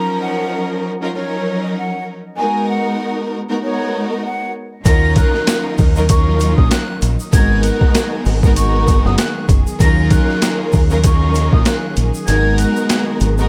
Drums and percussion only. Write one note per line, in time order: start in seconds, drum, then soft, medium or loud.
4.85 kick loud
4.85 closed hi-hat loud
4.85 shaker medium
5.16 kick medium
5.16 closed hi-hat medium
5.16 shaker medium
5.34 snare soft
5.47 snare loud
5.47 closed hi-hat loud
5.47 shaker medium
5.78 kick loud
5.78 open hi-hat medium
5.78 shaker soft
5.96 shaker soft
6.09 kick loud
6.09 closed hi-hat loud
6.09 shaker medium
6.40 closed hi-hat medium
6.40 shaker medium
6.58 kick loud
6.71 snare loud
6.71 closed hi-hat loud
6.71 shaker medium
7.02 closed hi-hat medium
7.02 shaker medium
7.20 shaker medium
7.33 kick loud
7.33 closed hi-hat loud
7.33 shaker medium
7.63 closed hi-hat medium
7.63 shaker medium
7.81 kick medium
7.95 snare loud
7.95 snare medium
7.95 closed hi-hat medium
7.95 shaker medium
8.25 open hi-hat medium
8.25 shaker soft
8.43 kick loud
8.43 shaker soft
8.56 closed hi-hat loud
8.56 shaker medium
8.87 kick medium
8.87 closed hi-hat medium
8.87 shaker medium
9.05 snare soft
9.18 snare loud
9.18 closed hi-hat loud
9.18 shaker medium
9.49 kick loud
9.49 closed hi-hat medium
9.49 shaker soft
9.67 shaker medium
9.80 kick loud
9.80 closed hi-hat loud
9.80 shaker medium
10.10 kick medium
10.10 closed hi-hat medium
10.10 shaker medium
10.29 snare soft
10.42 snare loud
10.42 snare medium
10.42 closed hi-hat loud
10.42 shaker medium
10.72 kick loud
10.72 open hi-hat medium
10.72 shaker soft
10.90 shaker soft
11.04 kick loud
11.04 closed hi-hat loud
11.04 shaker medium
11.34 closed hi-hat medium
11.34 shaker medium
11.53 kick loud
11.65 snare loud
11.65 closed hi-hat medium
11.65 shaker medium
11.96 closed hi-hat medium
11.96 shaker soft
12.14 shaker medium
12.27 closed hi-hat medium
12.27 shaker medium
12.58 closed hi-hat medium
12.58 shaker medium
12.76 shaker medium
12.89 snare loud
12.89 closed hi-hat loud
12.89 shaker medium
13.20 closed hi-hat medium
13.20 shaker soft
13.38 shaker soft